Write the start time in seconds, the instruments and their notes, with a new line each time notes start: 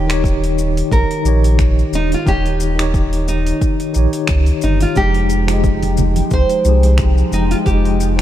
Already playing: sub bass D#1, tine electric piano D#3 D#4 G4 C#5, nylon-string guitar G4
0.07 tine electric piano D#3 D#4 G4, finger snap, open hi-hat, shaker
0.13 tine electric piano C#5
0.24 kick, shaker
0.44 open hi-hat
0.58 shaker
0.77 open hi-hat, shaker
0.92 sub bass A#1, nylon-string guitar A#4, kick, shaker
1.11 open hi-hat, shaker
1.22 sub bass A#1, tine electric piano D#3 D#4, shaker
1.26 tine electric piano G4 C#5
1.44 open hi-hat, shaker
1.59 finger snap, kick, shaker
1.79 shaker
1.93 sub bass D#1, nylon-string guitar D#4, shaker
2.12 nylon-string guitar F4, open hi-hat, shaker
2.25 sub bass D#1, tine electric piano D#3 D#4 G4 C#5, nylon-string guitar G4, kick, shaker
2.46 open hi-hat, shaker
2.60 shaker
2.75 tine electric piano D#3 D#4, finger snap, open hi-hat
2.80 tine electric piano G4 C#5, shaker
2.94 kick, shaker
3.13 open hi-hat
3.28 nylon-string guitar D#4, shaker
3.46 open hi-hat, shaker
3.61 kick, shaker
3.80 open hi-hat, shaker
3.92 sub bass A#1, tine electric piano D#3 D#4 G4, shaker
3.99 tine electric piano C#5
4.13 open hi-hat, shaker
4.27 sub bass C#2, finger snap, kick, shaker
4.46 open hi-hat, shaker
4.62 sub bass G1, nylon-string guitar D#4, shaker
4.80 nylon-string guitar F4, open hi-hat, shaker
4.95 sub bass F1, tine electric piano F3 G#3 D#4 G4, analog synth pad F3 G#3 D#4 G5, nylon-string guitar G4, kick, shaker
5.14 open hi-hat
5.30 shaker
5.47 tine electric piano F3 D#4, finger snap, open hi-hat, shaker
5.51 tine electric piano G#3 G4
5.64 kick, shaker
5.83 open hi-hat, muted conga
5.97 low conga, shaker
6.16 open hi-hat, high conga, shaker
6.31 sub bass C2, nylon-string guitar C5, kick, shaker
6.49 open hi-hat, shaker
6.62 sub bass C2, tine electric piano F3 D#4, shaker
6.66 tine electric piano G4 G#4
6.83 open hi-hat, shaker
6.98 finger snap, kick, shaker
7.18 shaker
7.32 sub bass F1, nylon-string guitar D#4, high conga, shaker
7.51 nylon-string guitar F4, open hi-hat, shaker
7.65 sub bass F1, tine electric piano F3 G#3 D#4 G4, nylon-string guitar G4, kick, shaker
7.85 open hi-hat
8.00 shaker
8.16 tine electric piano F3 D#4